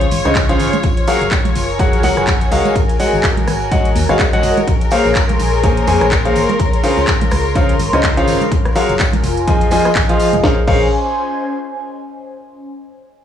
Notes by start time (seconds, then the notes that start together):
Already playing: C#2 F4 C#5 C6
0.01 closed hi-hat
0.11 G#1, open hi-hat, tambourine, high conga
0.25 C#2 C#3 F4 G#4 C5 C#5 D#5, cross-stick, closed hi-hat, tambourine
0.35 kick, clap, closed hi-hat, tambourine
0.49 C#3 F4 G#4 C5 C#5 F5, closed hi-hat, tambourine
0.59 G#1, open hi-hat, tambourine
0.73 closed hi-hat, tambourine, high conga
0.83 F#1, kick, closed hi-hat, tambourine
0.93 A#4
0.97 closed hi-hat, tambourine
1.07 F#3 F#4 G#4 A#4 C#5 F5, open hi-hat, tambourine
1.21 F#1, closed hi-hat, tambourine
1.31 kick, clap, closed hi-hat, tambourine
1.45 G#5, closed hi-hat, tambourine, high conga
1.56 F#1, open hi-hat, tambourine
1.70 tambourine
1.80 F#3 F#4 G#4 A#4 C#5 F#5, kick, closed hi-hat, tambourine
1.93 closed hi-hat, tambourine
2.03 C#2 F#3 F#4 G#4 A#4 C#5 F#5, open hi-hat, tambourine, high conga
2.17 F#1, cross-stick, closed hi-hat, tambourine
2.27 kick, clap, closed hi-hat, tambourine
2.41 closed hi-hat, tambourine
2.52 C#2 G#3 F#4 G#4 A#4 C#5 F5, open hi-hat, tambourine
2.65 closed hi-hat, tambourine, high conga
2.75 G#1 F#4 A#4, kick, closed hi-hat, tambourine
2.89 closed hi-hat, tambourine
3.00 G#3 F#4 G#4 C#5 D#5 F#5, open hi-hat, tambourine
3.13 G#1, tambourine
3.19 C#5
3.23 kick, clap, closed hi-hat, tambourine
3.37 closed hi-hat, tambourine, high conga
3.47 G#1, cross-stick, open hi-hat, tambourine
3.62 tambourine
3.71 G#3 F#4 G#4 C#5 D#5 F#5, kick, closed hi-hat, tambourine
3.85 closed hi-hat, tambourine
3.95 D#2, open hi-hat, tambourine, high conga
4.09 G#1 G#3 F#4 G#4 C#5 D#5 F5, cross-stick, closed hi-hat, tambourine
4.19 kick, clap, closed hi-hat, tambourine
4.33 G#3 F#4 G#4 C#5 D#5 F#5, closed hi-hat, tambourine
4.43 F#1, open hi-hat, tambourine
4.57 closed hi-hat, tambourine, high conga
4.68 A#1 G#4, kick, closed hi-hat, tambourine
4.81 C6, closed hi-hat, tambourine
4.91 A#3 G#4 A#4 C5 C#5 F5, open hi-hat, tambourine
5.05 A#1, tambourine
5.15 kick, clap, closed hi-hat, tambourine
5.29 closed hi-hat, tambourine, high conga
5.39 A#1, open hi-hat, tambourine
5.53 tambourine
5.63 A#3 G#4 A#4 C5 C#5 G#5, kick, closed hi-hat, tambourine
5.77 closed hi-hat, tambourine
5.87 F2 A#3 G#4 A#4 C5 C#5 G#5, open hi-hat, tambourine, high conga
6.01 A#1, cross-stick, closed hi-hat, tambourine
6.11 kick, clap, closed hi-hat, tambourine
6.25 A#3 G#4 A#4 C5 C#5 F5, closed hi-hat, tambourine
6.36 G#1, open hi-hat, tambourine
6.49 closed hi-hat, tambourine, high conga
6.59 C#2 F4, kick, closed hi-hat, tambourine
6.73 closed hi-hat, tambourine
6.83 C#3 F4 G#4 C5 C#5 F5, open hi-hat, tambourine
6.97 C#2, tambourine
7.07 kick, clap, closed hi-hat, tambourine
7.21 closed hi-hat, tambourine, high conga
7.31 C#2, cross-stick, open hi-hat, tambourine
7.45 tambourine
7.55 C#3 F4 G#4 C5 C#5 F5, kick, closed hi-hat, tambourine
7.69 closed hi-hat, tambourine
7.79 G#1, open hi-hat, tambourine, high conga
7.93 C#2 C#3 F4 G#4 C5 C#5 D#5, cross-stick, closed hi-hat, tambourine
8.03 kick, clap, closed hi-hat, tambourine
8.17 C#3 F4 G#4 C5 C#5 F5, closed hi-hat, tambourine
8.28 G#1, open hi-hat, tambourine
8.41 closed hi-hat, tambourine, high conga
8.51 F#1, kick, closed hi-hat, tambourine
8.65 cross-stick, closed hi-hat, tambourine
8.75 F#3 F#4 G#4 A#4 C#5 F5, open hi-hat, tambourine
8.88 F#1 A#4, closed hi-hat, tambourine
8.95 G#5
8.99 kick, clap, closed hi-hat, tambourine
9.13 closed hi-hat, tambourine, high conga
9.23 F1, open hi-hat, tambourine
9.37 closed hi-hat, tambourine
9.47 F3 F4 G#4 C5 D#5 G#5, kick, closed hi-hat, tambourine
9.60 D#5, closed hi-hat, tambourine
9.71 F3 F4 G#4 C5 D#5 G#5, open hi-hat, tambourine, high conga
9.85 cross-stick, closed hi-hat, tambourine
9.95 G#1, kick, clap, closed hi-hat, tambourine
10.09 F3 F4 G#4 C5 D#5 F5, closed hi-hat, tambourine
10.20 open hi-hat, tambourine
10.33 F1, closed hi-hat, tambourine, high conga
10.44 A#1 C#4 G#4 A#4 C5 C#5 F5, kick, snare
10.52 C5
10.59 G#5
10.68 A#1 G#4 A#4 C5 C#5 F5, kick, crash